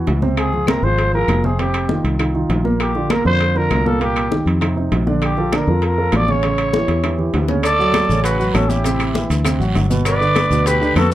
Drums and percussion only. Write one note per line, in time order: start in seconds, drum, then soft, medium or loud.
0.07 high bongo soft
0.07 low bongo medium
0.07 high conga soft
0.07 high timbale medium
0.07 low timbale medium
0.22 high bongo soft
0.22 high conga medium
0.37 high bongo medium
0.37 high conga soft
0.37 high timbale medium
0.37 claves medium
0.53 high bongo soft
0.53 high conga soft
0.67 high bongo medium
0.67 high conga medium
0.67 high timbale medium
0.67 low timbale medium
0.67 claves medium
0.83 high bongo soft
0.83 high conga soft
0.98 high bongo medium
0.98 high conga soft
0.98 high timbale medium
1.14 high conga soft
1.28 high bongo soft
1.28 low bongo medium
1.28 high conga medium
1.28 high timbale medium
1.28 low timbale medium
1.28 claves medium
1.44 high bongo soft
1.44 high conga medium
1.59 high bongo medium
1.59 high conga soft
1.59 high timbale medium
1.74 high bongo soft
1.74 high conga soft
1.74 high timbale medium
1.74 claves medium
1.89 high bongo medium
1.89 high conga medium
1.89 low timbale medium
2.05 high bongo soft
2.05 high timbale medium
2.19 high bongo medium
2.19 high conga soft
2.19 high timbale medium
2.19 claves medium
2.35 high conga soft
2.50 high bongo soft
2.50 low bongo medium
2.50 high conga soft
2.50 high timbale medium
2.50 low timbale medium
2.65 high bongo soft
2.65 high conga medium
2.80 high bongo medium
2.80 high conga soft
2.80 high timbale medium
2.80 claves medium
2.95 high bongo soft
2.95 high conga soft
3.10 high bongo medium
3.10 high conga medium
3.10 high timbale medium
3.10 low timbale medium
3.10 claves medium
3.25 high bongo soft
3.25 high conga soft
3.40 high bongo medium
3.40 high conga soft
3.40 high timbale medium
3.56 high conga soft
3.71 high bongo soft
3.71 low bongo medium
3.71 high conga medium
3.71 high timbale medium
3.71 low timbale medium
3.71 claves medium
3.86 high bongo soft
3.86 high conga medium
4.01 high bongo medium
4.01 high conga soft
4.01 high timbale medium
4.16 high bongo soft
4.16 high conga soft
4.16 high timbale medium
4.16 claves medium
4.32 high bongo medium
4.32 high conga medium
4.32 low timbale medium
4.46 high bongo soft
4.46 high timbale medium
4.61 high bongo medium
4.61 high conga soft
4.61 high timbale medium
4.61 claves medium
4.78 high conga soft
4.92 high bongo soft
4.92 low bongo medium
4.92 high conga soft
4.92 high timbale medium
4.92 low timbale medium
5.07 high bongo soft
5.07 high conga medium
5.22 high bongo medium
5.22 high conga soft
5.22 high timbale medium
5.22 claves medium
5.37 high bongo soft
5.37 high conga soft
5.52 high bongo medium
5.52 high conga medium
5.52 high timbale medium
5.52 low timbale medium
5.52 claves medium
5.67 high bongo soft
5.67 high conga soft
5.82 high bongo medium
5.82 high conga soft
5.82 high timbale medium
5.98 high conga soft
6.12 high bongo soft
6.12 low bongo medium
6.12 high conga medium
6.12 high timbale medium
6.12 low timbale medium
6.12 claves medium
6.28 high bongo soft
6.28 high conga medium
6.43 high bongo medium
6.43 high conga soft
6.43 high timbale medium
6.58 high bongo soft
6.58 high conga soft
6.58 high timbale medium
6.58 claves medium
6.73 high bongo medium
6.73 high conga medium
6.73 low timbale soft
6.88 high bongo medium
6.88 high timbale medium
7.03 low bongo medium
7.03 high conga soft
7.03 high timbale medium
7.03 claves medium
7.18 high conga soft
7.33 low bongo medium
7.33 high conga soft
7.33 high timbale medium
7.33 low timbale medium
7.48 low bongo medium
7.48 high conga medium
7.63 high bongo medium
7.63 high conga soft
7.63 high timbale medium
7.63 long guiro medium
7.63 claves medium
7.63 maracas medium
7.79 high bongo soft
7.79 high conga soft
7.79 maracas soft
7.94 high bongo medium
7.94 high conga loud
7.94 high timbale medium
7.94 low timbale medium
7.94 short guiro medium
7.94 claves medium
7.94 maracas soft
8.09 high bongo soft
8.09 high conga soft
8.09 short guiro medium
8.09 maracas medium
8.24 high bongo medium
8.24 high conga soft
8.24 high timbale medium
8.24 long guiro medium
8.24 maracas medium
8.39 high conga soft
8.39 maracas soft
8.54 high bongo soft
8.54 low bongo medium
8.54 high conga medium
8.54 high timbale medium
8.54 low timbale medium
8.54 short guiro medium
8.54 claves medium
8.54 maracas soft
8.69 high bongo soft
8.69 high conga medium
8.69 short guiro medium
8.69 maracas medium
8.84 high bongo medium
8.84 high conga soft
8.84 high timbale medium
8.84 long guiro medium
8.84 maracas medium
8.99 high bongo soft
8.99 high conga soft
8.99 high timbale medium
8.99 claves medium
8.99 maracas soft
9.15 high bongo medium
9.15 high conga medium
9.15 low timbale medium
9.15 short guiro medium
9.15 maracas soft
9.29 high bongo soft
9.29 high timbale medium
9.29 short guiro medium
9.29 maracas medium
9.45 high bongo medium
9.45 high timbale medium
9.45 long guiro medium
9.45 claves medium
9.45 maracas medium
9.61 high conga soft
9.61 maracas soft
9.75 high bongo soft
9.75 low bongo medium
9.75 high conga soft
9.75 high timbale medium
9.75 low timbale medium
9.75 short guiro medium
9.75 maracas soft
9.90 high bongo soft
9.90 high conga medium
9.90 short guiro medium
9.90 maracas medium
10.05 high bongo medium
10.05 high conga soft
10.05 high timbale medium
10.05 long guiro medium
10.05 claves medium
10.05 maracas medium
10.21 high bongo soft
10.21 high conga soft
10.21 maracas soft
10.35 high bongo medium
10.35 high conga loud
10.35 high timbale medium
10.35 low timbale medium
10.35 short guiro medium
10.35 claves medium
10.35 maracas soft
10.51 high bongo soft
10.51 high conga soft
10.51 short guiro medium
10.51 maracas medium
10.66 high bongo medium
10.66 high conga soft
10.66 high timbale medium
10.66 long guiro medium
10.66 maracas medium
10.82 high conga soft
10.82 maracas soft
10.96 high bongo soft
10.96 low bongo medium
10.96 high conga medium
10.96 high timbale medium
10.96 low timbale medium
10.96 short guiro medium
10.96 claves medium
10.96 maracas soft